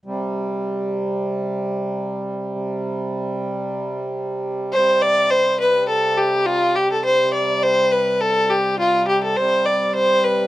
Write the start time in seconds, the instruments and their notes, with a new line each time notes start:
0.05 harmonium C3 G3
4.73 harmonium C3 G3, fiddle C5
5.02 fiddle D5
5.31 fiddle C5
5.60 fiddle B4
5.88 fiddle A4
6.18 fiddle G4
6.46 fiddle F4
6.75 fiddle G4
6.92 fiddle A4
7.05 fiddle C5
7.33 fiddle D5
7.63 fiddle C5
7.92 fiddle B4
8.21 fiddle A4
8.50 fiddle G4
8.79 fiddle F4
9.08 fiddle G4
9.23 fiddle A4
9.36 harmonium C3 G3, fiddle C5
9.65 fiddle D5
9.95 fiddle C5
10.24 fiddle B4